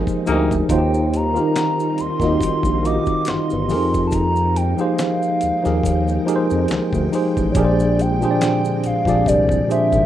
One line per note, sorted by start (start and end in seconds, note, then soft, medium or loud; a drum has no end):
0.00 0.26 F3 medium
0.00 0.66 G#3 medium
0.00 0.66 A#3 medium
0.00 0.27 D#4 medium
0.00 7.51 D#4 medium
0.00 0.27 G4 medium
0.00 0.28 G#4 medium
0.00 0.30 A#4 loud
0.00 0.23 C5 medium
0.00 0.66 G5 medium
0.07 kick medium
0.07 maracas soft
0.26 0.62 D2 medium
0.26 0.55 C3 medium
0.26 0.67 F3 medium
0.26 0.55 A#3 medium
0.26 0.67 D#4 medium
0.26 0.55 D#4 medium
0.26 0.68 G4 medium
0.26 0.68 G#4 medium
0.26 0.69 A#4 medium
0.26 closed hi-hat medium
0.26 maracas soft
0.51 kick medium
0.51 maracas medium
0.69 1.39 D#2 loud
0.69 1.31 D#3 medium
0.69 3.67 G3 medium
0.69 3.67 C4 medium
0.69 1.31 D#4 medium
0.69 3.66 F4 medium
0.69 1.31 F4 medium
0.69 0.77 F#4 medium
0.69 1.32 C5 medium
0.69 1.18 G5 medium
0.69 kick loud
0.69 closed hi-hat medium
0.69 maracas medium
0.78 1.35 G4 medium
0.94 maracas soft
1.14 2.02 A#5 loud
1.14 closed hi-hat medium
1.14 maracas soft
1.33 2.14 D#3 medium
1.33 2.15 D#4 medium
1.33 2.15 F4 medium
1.33 2.16 G4 medium
1.33 2.16 A#4 medium
1.33 maracas soft
1.56 finger snap medium
1.56 snare loud
1.56 closed hi-hat medium
1.56 maracas medium
1.80 maracas soft
1.98 2.09 D#2 soft
1.98 2.87 C6 loud
1.98 closed hi-hat medium
1.98 maracas soft
2.19 2.37 D#2 medium
2.19 2.79 D#3 medium
2.19 2.80 D#4 medium
2.19 2.80 F4 medium
2.19 2.28 F#4 medium
2.19 kick medium
2.19 snare soft
2.19 maracas soft
2.24 2.81 D#5 medium
2.29 2.84 G4 medium
2.41 2.51 A#1 soft
2.41 kick loud
2.41 closed hi-hat medium
2.41 maracas medium
2.63 2.99 A#1 medium
2.63 kick medium
2.63 maracas soft
2.83 3.69 D#3 medium
2.83 3.68 D#4 medium
2.83 3.70 F4 medium
2.83 2.92 F#4 soft
2.83 3.30 D6 loud
2.83 closed hi-hat medium
2.83 maracas medium
2.87 3.71 D#5 medium
2.92 3.69 G4 medium
3.06 kick medium
3.06 maracas soft
3.25 4.07 C6 loud
3.25 finger snap medium
3.25 snare medium
3.25 closed hi-hat medium
3.25 maracas medium
3.30 3.38 G1 medium
3.50 3.74 G1 loud
3.50 maracas soft
3.68 4.74 F2 loud
3.68 4.71 F3 medium
3.68 10.06 G#3 medium
3.68 7.52 A#3 medium
3.68 4.71 D#4 medium
3.68 4.71 G4 medium
3.68 4.72 G#4 medium
3.68 4.73 A#4 medium
3.68 10.06 G5 medium
3.68 open hi-hat medium
3.68 maracas soft
3.94 kick medium
3.94 maracas soft
4.07 4.15 A5 medium
4.11 4.58 A#5 loud
4.11 kick loud
4.11 closed hi-hat medium
4.11 maracas medium
4.36 maracas soft
4.56 4.82 G5 medium
4.56 closed hi-hat medium
4.56 maracas soft
4.77 5.58 F3 medium
4.77 5.58 D#4 medium
4.77 5.59 G4 medium
4.77 5.59 G#4 medium
4.77 5.60 C5 medium
4.77 7.13 F5 loud
4.77 maracas soft
4.99 finger snap medium
4.99 snare loud
4.99 closed hi-hat medium
4.99 maracas medium
5.23 maracas soft
5.41 5.52 D#2 soft
5.41 closed hi-hat medium
5.41 maracas soft
5.63 5.81 D#2 medium
5.63 6.23 F3 medium
5.63 6.23 D#4 medium
5.63 6.24 G4 medium
5.63 6.24 G#4 medium
5.63 6.24 A#4 medium
5.63 snare soft
5.63 maracas soft
5.83 6.19 D#2 loud
5.83 kick medium
5.83 closed hi-hat medium
5.83 maracas medium
6.08 maracas soft
6.26 7.07 F3 medium
6.26 7.08 D#4 medium
6.26 7.08 G4 medium
6.26 7.08 G#4 medium
6.26 6.35 A#4 medium
6.26 closed hi-hat medium
6.26 maracas medium
6.36 7.12 C5 loud
6.50 6.67 F2 loud
6.50 maracas soft
6.68 6.80 D2 medium
6.68 finger snap medium
6.68 snare loud
6.68 closed hi-hat medium
6.68 maracas medium
6.93 7.09 D2 medium
6.93 kick medium
6.93 maracas soft
7.11 7.52 F3 medium
7.11 7.53 D#4 medium
7.11 7.53 G4 medium
7.11 7.54 G#4 medium
7.11 open hi-hat soft
7.11 maracas soft
7.15 7.54 C5 medium
7.37 7.53 A1 medium
7.37 kick medium
7.37 maracas medium
7.52 8.16 A#2 medium
7.52 10.06 D3 medium
7.52 8.17 F3 medium
7.52 10.06 C4 medium
7.52 7.60 C#5 medium
7.52 kick loud
7.52 closed hi-hat medium
7.52 maracas medium
7.56 8.25 A#1 loud
7.56 8.17 D4 medium
7.56 8.18 G4 medium
7.56 8.18 G#4 medium
7.56 7.64 A#4 medium
7.56 8.02 D5 loud
7.65 8.22 C5 medium
7.80 maracas medium
7.99 8.88 G5 loud
7.99 closed hi-hat medium
7.99 maracas soft
8.20 9.01 A#2 medium
8.20 9.01 F3 medium
8.20 9.02 D4 medium
8.20 9.02 G4 medium
8.20 9.02 G#4 medium
8.20 maracas soft
8.25 8.29 C5 medium
8.31 9.06 D5 medium
8.41 finger snap medium
8.41 snare loud
8.41 closed hi-hat medium
8.41 maracas medium
8.65 maracas soft
8.84 8.94 A#1 soft
8.84 9.29 F5 loud
8.84 closed hi-hat medium
8.84 maracas soft
9.05 9.22 A#1 medium
9.05 9.65 A#2 medium
9.05 9.66 F3 medium
9.05 9.66 D4 medium
9.05 9.66 G4 medium
9.05 9.67 G#4 medium
9.05 kick medium
9.05 snare soft
9.05 maracas soft
9.10 9.67 D5 medium
9.26 9.61 C2 loud
9.26 9.70 D5 loud
9.26 kick medium
9.26 closed hi-hat medium
9.26 maracas medium
9.49 kick medium
9.49 maracas soft
9.68 10.06 A#2 medium
9.68 10.06 F3 medium
9.68 10.06 D4 medium
9.68 10.06 G4 medium
9.68 10.06 G#4 medium
9.68 10.06 E5 loud
9.68 closed hi-hat medium
9.68 maracas medium
9.72 10.06 C5 medium
9.92 10.06 G#1 loud
9.92 kick medium
9.92 maracas soft